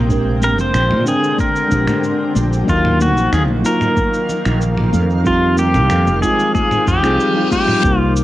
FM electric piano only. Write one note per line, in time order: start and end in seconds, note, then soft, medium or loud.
0.00 0.08 G#3 medium
0.00 0.09 C4 medium
0.00 0.11 D#4 medium
0.00 0.12 A#4 medium
0.00 0.12 G5 medium
0.08 0.32 G#3 medium
0.08 0.33 C4 medium
0.08 0.33 D4 medium
0.08 0.34 G4 medium
0.08 0.34 A#4 medium
1.05 1.66 G#3 medium
1.05 1.67 C4 medium
1.05 1.67 D4 medium
1.05 1.68 A#4 medium
1.05 1.68 G5 medium
1.68 2.62 G#3 medium
1.68 2.63 C4 medium
1.68 2.64 D4 medium
1.73 2.65 G4 medium
1.73 2.66 A#4 medium
2.64 3.59 F#3 medium
2.64 3.60 A#3 medium
2.64 3.61 D#4 medium
2.69 3.62 A#4 loud
2.69 3.62 F5 medium
3.61 5.20 F#3 medium
3.61 5.21 A#3 medium
3.61 5.22 D#4 medium
3.66 5.23 F4 medium
3.66 5.24 A#4 medium
5.24 5.48 G3 medium
5.24 5.48 C4 medium
5.24 5.49 D#4 medium
5.24 5.49 F4 medium
5.24 5.50 G4 medium
6.21 6.83 G#3 medium
6.21 6.83 C4 medium
6.21 6.84 D#4 medium
6.21 6.84 F4 medium
6.21 6.84 G#4 medium
7.02 7.31 G3 medium
7.02 7.32 C4 medium
7.02 7.32 D#4 medium
7.02 7.32 F4 medium
7.02 7.33 G#4 medium
7.34 7.79 G3 medium
7.34 7.80 C4 medium
7.34 7.80 D#4 medium
7.34 7.81 F4 medium
7.34 7.81 G4 medium
7.80 8.24 G3 loud
7.80 8.24 A#3 medium
7.80 8.24 C4 medium
7.86 8.24 D#4 medium
7.86 8.24 A#4 loud